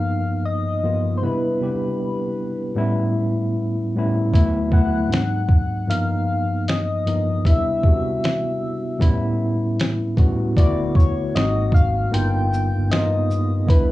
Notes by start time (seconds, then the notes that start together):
Already playing: G2 F3 A#3 B3 D#4 F5
0.46 D#5
0.83 G2 F3 A#3 B3 F4
1.17 C3 C5
1.22 G3 B3 D4 E4 B4
1.60 C3 G3 B3 D4 G4
2.75 A2 G3 B3 C#4 E4
3.95 A2 G3 B3 C#4 E4
4.31 D2 F#3 A3 B3 E4, kick
4.35 closed hi-hat
4.70 D2 F#3 A3 B3 E4 F#5, kick
5.07 G#2 F#3 A#3 C4 D4
5.13 D#4, snare, closed hi-hat
5.49 kick
5.87 G2 F3 A#3 B3 D#4 F5, closed hi-hat
6.68 D#5, snare, closed hi-hat
7.06 G2 F3 A#3 B3 D#4, closed hi-hat
7.44 C3 G3 B3 D4 E4 E5, kick, closed hi-hat
7.83 C3 G3 B3 D4, kick
7.88 F#4
8.24 snare, closed hi-hat
8.99 A2 G3 B3 C#4 E4, kick, closed hi-hat
9.80 snare, closed hi-hat
10.16 A2 G3 B3 C#4 F#4, kick, closed hi-hat
10.57 D1 D3 A3 B3 E4 F#4 D5, kick, closed hi-hat
10.95 C#5, kick
10.99 shaker
11.34 G#1 G#2 A#3 C4 D#4 F#4 D#5, snare, closed hi-hat
11.72 F5, kick, shaker
12.11 G1 G2 A#3 B3 D#4 F4 G5, closed hi-hat
12.53 shaker
12.77 G1
12.89 G2 A#3 B3 D#4 F4 D#5, snare, closed hi-hat
13.31 shaker
13.65 C2 C3 G3 B3 D4 E4, kick
13.70 B4, closed hi-hat